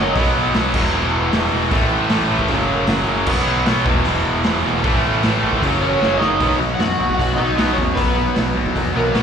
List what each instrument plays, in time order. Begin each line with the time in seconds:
Already playing: distorted electric guitar F#2 C#3 F#3, overdriven electric guitar D#5
0.15 picked electric bass B1, distorted electric guitar B2 F#3 B3, kick, open hi-hat
0.36 picked electric bass B1
0.54 picked electric bass B1, distorted electric guitar B2 F#3 B3, snare, open hi-hat
0.74 picked electric bass E1, distorted electric guitar E2 B2 E3, kick, crash
0.94 picked electric bass E1, distorted electric guitar E2 B2 E3
1.13 picked electric bass E1
1.32 picked electric bass E1, distorted electric guitar E2 B2 E3, snare, open hi-hat
1.51 picked electric bass E1, distorted electric guitar E2 B2 E3
1.71 picked electric bass A1, distorted electric guitar A2 E3 A3, kick, open hi-hat
1.90 picked electric bass A1
2.09 picked electric bass A1, distorted electric guitar A2 E3 A3, snare, open hi-hat
2.29 picked electric bass A1, distorted electric guitar A2 E3 A3
2.39 kick
2.48 picked electric bass F#1, distorted electric guitar F#2 C#3 F#3, kick, open hi-hat
2.70 picked electric bass F#1
2.87 picked electric bass F#1, distorted electric guitar F#2 C#3 F#3, snare, open hi-hat
3.06 picked electric bass F#1, distorted electric guitar F#2 C#3 F#3
3.26 picked electric bass B1, distorted electric guitar B2 F#3 B3, kick, crash
3.47 picked electric bass B1
3.66 picked electric bass B1, distorted electric guitar B2 F#3 B3, snare, open hi-hat
3.86 picked electric bass E1, distorted electric guitar E2 B2 E3, kick
4.05 picked electric bass E1, distorted electric guitar E2 B2 E3, open hi-hat
4.26 picked electric bass E1
4.44 picked electric bass E1, distorted electric guitar E2 B2 E3, snare, open hi-hat
4.64 picked electric bass E1, distorted electric guitar E2 B2 E3
4.83 picked electric bass A1, distorted electric guitar A2 E3 A3, kick, open hi-hat
5.04 picked electric bass A1
5.23 picked electric bass A1, distorted electric guitar A2 E3 A3, snare, open hi-hat
5.42 picked electric bass G#1, distorted electric guitar A2 E3 A3
5.53 kick
5.61 picked electric bass F#1, distorted electric guitar F#2 C#3 F#3, kick, open hi-hat
5.81 picked electric bass F#1, overdriven electric guitar C#4 C#5
6.00 picked electric bass F#1, distorted electric guitar F#2 C#3 F#3, snare
6.17 picked electric bass F#1, distorted electric guitar F#2, overdriven electric guitar D#4 D#5, snare
6.21 distorted electric guitar C#3 F#3
6.40 picked electric bass B1, distorted electric guitar B2 F#3 B3, kick, open hi-hat
6.60 picked electric bass B1, distorted electric guitar B2 F#3
6.75 overdriven electric guitar F#5
6.79 picked electric bass F#2, distorted electric guitar B2 F#3, overdriven electric guitar F#4, snare, open hi-hat
7.00 picked electric bass B1, distorted electric guitar B2 F#3
7.09 kick
7.14 overdriven electric guitar F#5
7.19 picked electric bass B1, distorted electric guitar B2 F#3, overdriven electric guitar F#4, kick, open hi-hat
7.33 overdriven electric guitar D#5
7.37 picked electric bass B1, distorted electric guitar B2 F#3 B3, overdriven electric guitar D#4
7.58 picked electric bass B1, distorted electric guitar B2 F#3 B3, snare, open hi-hat
7.73 overdriven electric guitar C#4 C#5
7.78 picked electric bass E2, distorted electric guitar B2 F#3, kick
7.95 picked electric bass B1, distorted electric guitar B2 F#3, overdriven electric guitar B3 B4, kick, open hi-hat
8.00 distorted electric guitar B3
8.18 distorted electric guitar B2 F#3
8.36 picked electric bass B1, distorted electric guitar B2 F#3, snare, open hi-hat
8.57 picked electric bass B1, distorted electric guitar B2 F#3
8.66 kick
8.76 picked electric bass E2, distorted electric guitar B2 F#3, kick, open hi-hat
8.95 picked electric bass B1, distorted electric guitar B2 F#3 B3, overdriven electric guitar A#3 A#4
9.15 picked electric bass B1, distorted electric guitar B2 F#3 B3, snare, open hi-hat